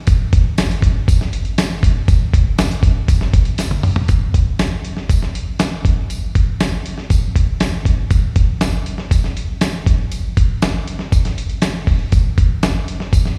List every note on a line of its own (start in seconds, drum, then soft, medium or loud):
0.07 kick loud
0.07 closed hi-hat medium
0.07 tambourine medium
0.33 kick medium
0.33 closed hi-hat medium
0.58 snare loud
0.58 closed hi-hat medium
0.58 tambourine medium
0.71 closed hi-hat medium
0.82 kick medium
0.82 closed hi-hat medium
1.08 kick medium
1.08 closed hi-hat medium
1.08 tambourine medium
1.21 snare soft
1.33 closed hi-hat medium
1.45 closed hi-hat soft
1.58 snare loud
1.58 closed hi-hat loud
1.58 tambourine loud
1.83 kick medium
1.83 closed hi-hat medium
2.08 kick loud
2.08 closed hi-hat medium
2.08 tambourine medium
2.34 kick medium
2.34 closed hi-hat medium
2.58 snare loud
2.58 closed hi-hat medium
2.58 tambourine medium
2.71 closed hi-hat medium
2.83 kick loud
2.83 closed hi-hat medium
3.08 kick medium
3.08 closed hi-hat medium
3.08 tambourine medium
3.21 snare soft
3.34 kick medium
3.34 closed hi-hat medium
3.45 closed hi-hat soft
3.58 snare medium
3.58 closed hi-hat loud
3.58 tambourine medium
3.71 high tom medium
3.83 mid tom medium
3.83 open hi-hat medium
3.96 floor tom loud
4.08 kick loud
4.08 closed hi-hat medium
4.08 tambourine medium
4.34 kick medium
4.34 closed hi-hat medium
4.59 snare loud
4.59 closed hi-hat medium
4.59 tambourine medium
4.85 closed hi-hat medium
4.97 snare soft
5.09 kick medium
5.09 closed hi-hat medium
5.09 tambourine medium
5.23 snare soft
5.35 closed hi-hat medium
5.59 snare loud
5.59 closed hi-hat medium
5.59 tambourine medium
5.85 kick medium
5.85 closed hi-hat medium
6.10 closed hi-hat medium
6.10 tambourine medium
6.35 kick medium
6.35 closed hi-hat medium
6.60 snare loud
6.60 closed hi-hat medium
6.60 tambourine medium
6.86 closed hi-hat medium
6.98 snare soft
7.10 kick medium
7.10 closed hi-hat medium
7.10 tambourine medium
7.36 kick medium
7.36 closed hi-hat medium
7.60 snare loud
7.60 closed hi-hat medium
7.60 tambourine medium
7.85 kick medium
7.85 closed hi-hat medium
8.11 kick loud
8.11 closed hi-hat medium
8.11 tambourine medium
8.36 kick medium
8.36 closed hi-hat medium
8.61 snare loud
8.61 closed hi-hat medium
8.61 tambourine medium
8.86 closed hi-hat medium
8.98 snare soft
9.11 kick medium
9.11 closed hi-hat medium
9.11 tambourine medium
9.24 snare soft
9.37 closed hi-hat medium
9.61 snare loud
9.61 closed hi-hat medium
9.61 tambourine medium
9.86 kick medium
9.86 closed hi-hat medium
10.12 closed hi-hat medium
10.12 tambourine medium
10.37 kick medium
10.37 closed hi-hat medium
10.62 snare loud
10.62 closed hi-hat medium
10.62 tambourine medium
10.88 closed hi-hat medium
10.99 snare soft
11.12 kick medium
11.12 closed hi-hat medium
11.12 tambourine medium
11.25 snare soft
11.25 closed hi-hat medium
11.38 closed hi-hat medium
11.49 closed hi-hat soft
11.62 snare loud
11.62 closed hi-hat medium
11.62 tambourine medium
11.87 kick medium
11.87 open hi-hat soft
12.12 kick loud
12.12 closed hi-hat medium
12.12 tambourine medium
12.38 kick medium
12.38 closed hi-hat medium
12.63 snare loud
12.63 closed hi-hat medium
12.63 tambourine medium
12.88 closed hi-hat medium
13.00 snare soft
13.13 kick medium
13.13 closed hi-hat medium
13.13 tambourine medium
13.25 snare soft